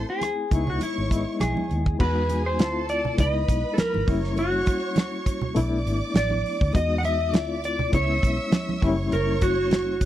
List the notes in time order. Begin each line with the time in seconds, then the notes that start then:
Already playing: A3 C4 E4 C5 C6
0.10 G#4
0.21 cross-stick, closed hi-hat, high conga
0.51 C#2 G#3 B3 D#4 E4 C#5 C#6, kick, closed hi-hat
0.67 F#4, low conga
0.81 E4, closed hi-hat, muted conga
0.98 G#1
1.09 G#3 B3 E4 D#5, kick, closed hi-hat
1.40 B1 G#4, cross-stick, closed hi-hat, high conga
1.57 high conga
1.70 D#2, closed hi-hat, high conga
1.86 kick, cross-stick
1.99 E2 G#3 B3 D#4 F#4 G#4 B4 G#5, kick, crash, muted conga
2.29 closed hi-hat, muted conga
2.46 C5
2.58 D2 A3 C4 E4 F4 A4 A5, snare, closed hi-hat, high conga
2.89 D5, closed hi-hat
3.05 low conga
3.18 C#2 G#3 B3 D#4 E4 B4 D#5 B5, kick, closed hi-hat, muted conga, low conga
3.48 B1, kick, closed hi-hat
3.74 A4
3.78 A#4, muted fingered electric bass stroke, snare, closed hi-hat, high conga
3.94 G#1, high conga
4.07 F#1 G3 A#3 C#4 E4 C#5 C#6, kick, open hi-hat
4.24 snare
4.37 F#4, closed hi-hat, muted conga
4.66 kick, closed hi-hat, muted conga
4.96 snare, closed hi-hat, high conga
5.26 kick, closed hi-hat
5.42 low conga
5.55 B1 A3 B3 D4 E4 D5 D6, closed hi-hat, muted conga, low conga
5.86 G#1, closed hi-hat
6.14 A1 D5, snare, closed hi-hat, high conga
6.30 high conga
6.46 open hi-hat
6.61 D2, kick
6.73 E2 G#3 B3 D#4 F#4 D#5 D#6, kick, closed hi-hat, muted conga
6.98 F#5
7.03 E5, closed hi-hat, muted conga
7.33 D2 A3 C4 E4 F4 D5 D6, snare, closed hi-hat, high conga
7.64 D5, closed hi-hat
7.79 low conga
7.92 C#2 G#3 B3 C#4 E4 C#5 E5 E6, kick, closed hi-hat, muted conga, low conga
8.23 B1, kick, closed hi-hat
8.52 snare, closed hi-hat, high conga
8.69 high conga
8.82 F#1 G3 A#3 C#4 E4 C#5 C#6, kick, open hi-hat
9.12 F#1 A#4, closed hi-hat
9.41 F#4, kick, closed hi-hat, muted conga
9.71 snare, closed hi-hat, high conga
10.01 kick, closed hi-hat